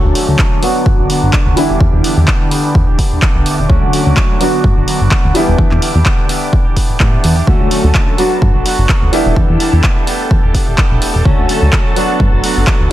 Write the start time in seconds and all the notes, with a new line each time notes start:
Already playing: D3 F#3 A3 C#4 F#4 D6
0.03 D2 A3 C#4 A4
0.14 F#3 A3 C#4 A4, open hi-hat
0.27 D2 A3 C#4 A4
0.38 F#3 A3 C#4 A4, kick, clap
0.62 F#3 B3 D4 F#4, open hi-hat
0.86 G2, kick
0.98 G1 B3 D4 F#4
1.09 F#3 B3 D4 F#4, open hi-hat
1.22 G1
1.33 F#3 B3 D4 F#4, kick, clap
1.46 D2
1.56 E3 G3 B3 D4 E4 G4, open hi-hat
1.70 E1
1.81 E2, kick
1.93 E2 D4 G4
2.03 B3 D4 G4, open hi-hat
2.16 E2 D4 G4
2.27 B3 D4 G4, kick, clap
2.51 B3 D4 G4, open hi-hat
2.75 E2, kick
2.87 E1 D4 G4
2.98 B3 D4 G4, kick, open hi-hat
3.12 E1
3.22 B3 D4 G4, kick, clap
3.35 B1
3.46 open hi-hat
3.58 E1 D4 G4
3.69 D2 D3 F#3 A3 C#4 F#4, kick
3.83 D2
3.92 F#3 A3 C#4 F#4, open hi-hat
4.05 D2 A3 C#4 F#4
4.16 F#3 A3 F#4, kick, clap
4.40 F#3 B3 D4 F#4, open hi-hat
4.64 G2, kick
4.76 G1 B3 D4 F#4
4.87 F#3 B3 D4 F#4, open hi-hat
5.00 G1 B3 D4 F#4
5.11 F#3 B3 D4 F#4, kick, clap
5.24 D2
5.34 E3 G3 B3 D4 E4 G4, open hi-hat
5.48 E1
5.58 E2, kick
5.70 E2 D4 G4, clap
5.81 B3 D4 G4, open hi-hat
5.94 E2 D4 G4
6.05 B3 D4 G4, kick, clap
6.28 B3 D4 G4, open hi-hat
6.53 kick
6.65 D4 G4
6.76 B3 D4 G4, kick, open hi-hat
6.90 A2
6.99 A2 B3 D4 G4, kick, clap
7.24 E2, open hi-hat
7.36 D4 G4
7.47 D2 D3 F#3 A3 C#4 F#4 A4 A5, kick
7.60 D2
7.70 F#3 A3 C#4 A4, open hi-hat
7.83 D2 A3 C#4 A4
7.94 F#3 A3 C#4 A4, kick, clap
8.17 F#3 B3 D4 F#4, open hi-hat
8.42 G2, kick
8.54 G1 B3 D4 F#4
8.65 F#3 B3 D4 F#4, open hi-hat
8.78 G1
8.89 F#3 B3 F#4, kick, clap
9.02 D2
9.12 E1 E3 G3 B3 D4 E4 G4, open hi-hat
9.26 E1
9.36 E2, kick
9.48 E2 D4 G4
9.59 B3 D4 G4, open hi-hat
9.72 E2 D4 G4
9.83 B3 D4 G4, kick, clap
10.06 B3 D4 G4, open hi-hat
10.31 E2, kick
10.43 E1 D4 G4
10.53 B3 D4 G4, kick, open hi-hat
10.66 E1 D4 G4
10.78 B3 D4 G4, kick, clap
10.91 B1
11.02 E1, open hi-hat
11.14 E1 D4 G4
11.25 D2 D3 F#3 A3 C#4 F#4 A4, kick
11.38 D2
11.48 F#3 A3 C#4 A4, open hi-hat
11.61 D2 A3 C#4 A4
11.72 F#3 A3 C#4 A4, kick, clap
11.95 F#3 B3 D4 F#4, open hi-hat
12.20 G2, kick
12.32 G1 B3 D4 F#4
12.43 F#3 B3 D4 F#4, open hi-hat
12.57 G1
12.67 F#3 D4 F#4, kick, clap
12.80 D2